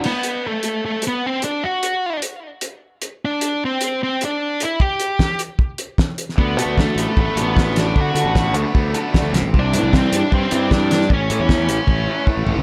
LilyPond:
<<
  \new Staff \with { instrumentName = "Overdriven electric guitar" } { \time 4/4 \key d \mixolydian \tempo 4 = 152 r1 | r1 | r1 | r1 |
r8 <a d' fis' a'>8 <a d' fis' a'>8 r4 <a d' fis' a'>8 <a d' fis' a'>8 r8 | r8 <a d' fis' a'>8 <a d' fis' a'>8 r4 <a d' fis' a'>8 <a d' fis' a'>8 r8 | r8 <e g c' e'>8 <e g c' e'>8 r4 <e g c' e'>8 <e g c' e'>8 r8 | r8 <e a cis' e'>8 <e a cis' e'>8 r4 <e a cis' e'>8 <e a cis' e'>8 r8 | }
  \new Staff \with { instrumentName = "Lead electric guitar" } { \time 4/4 \key d \mixolydian b4 a4 a8 b8 c'8 d'8 | fis'4. r2 r8 | d'4 c'4 c'8 d'4 e'8 | g'4. r2 r8 |
b4 a4 a8 b4 d'8 | fis'4. r2 r8 | d'4 c'8 d'8 c'8 c'8 d'4 | cis'2. r4 | }
  \new Staff \with { instrumentName = "Overdriven electric guitar" } { \time 4/4 \key d \mixolydian r1 | r1 | r1 | r1 |
d8 a8 a8 b8 a8 d8 a8 b8 | d8 a8 a8 b8 a8 d8 a8 c8 | c8 e8 g8 d'8 g8 e8 g8 d'8 | a,8 e8 a8 cis'8 a8 e8 a8 cis'8 | }
  \new Staff \with { instrumentName = "Fingered electric bass" } { \clef bass \time 4/4 \key d \mixolydian r1 | r1 | r1 | r1 |
d,8 b,16 d,8 r16 a,,16 r16 a,,16 r16 a,,4. | d8 d16 a,,8. d,16 r16 d,8 r8. d,16 c,16 a,,16 | c,8 a,16 c,8 r16 g,16 r16 g,16 r16 g,4. | a,,8 a,16 e,8. a,,16 r16 a,,8 r8. a,,16 a,,16 cis,16 | }
  \new DrumStaff \with { instrumentName = "Drums" } \drummode { \time 4/4 cymc8 hh8 r8 hh8 r8 hh8 r8 hh8 | r8 hh8 r8 hh8 r8 hh8 r8 hh8 | r8 hh8 r8 hh8 r8 hh8 r8 hh8 | bd8 hh8 <bd sn>8 hh8 bd8 hh8 <bd sn>8 hh16 sn16 |
bd8 hh8 <bd sn>8 hh8 bd8 hh8 <bd sn>8 <hh sn>8 | bd8 hh8 <bd sn>8 hh8 bd8 hh8 <bd sn>8 <hh sn>8 | bd8 hh8 <bd sn>8 hh8 bd8 hh8 <bd sn>8 <hh sn>16 sn16 | bd8 hh8 <bd sn>8 hh8 <bd tommh>4 bd8 tomfh8 | }
>>